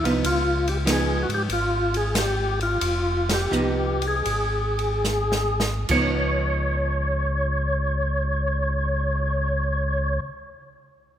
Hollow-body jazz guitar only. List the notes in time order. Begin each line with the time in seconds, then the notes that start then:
0.05 F3 B3 D#4
0.85 F3 B3 D#4
3.51 F3 B3 D#4
5.89 F3 B3 D#4